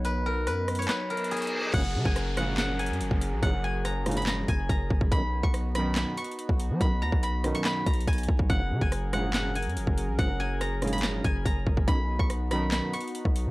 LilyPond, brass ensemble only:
\new Staff \with { instrumentName = "Brass ensemble" } { \clef bass \time 4/4 \key fis \major \tempo 4 = 142 r1 | <ais,, gis, cis>16 r4 r16 <ais,, gis, cis>4 r4. | <ais,, gis, cis>16 r4 r16 <ais,, gis, cis>4 r4. | <b,, fis, dis>16 r4 r16 <b,, fis, dis>4 r4. |
<b,, fis, dis>16 r4 r16 <b,, fis, dis>4 r4. | <ais,, gis, cis>16 r4 r16 <ais,, gis, cis>4 r4. | <ais,, gis, cis>16 r4 r16 <ais,, gis, cis>4 r4. | <b,, fis, dis>16 r4 r16 <b,, fis, dis>4 r4. | }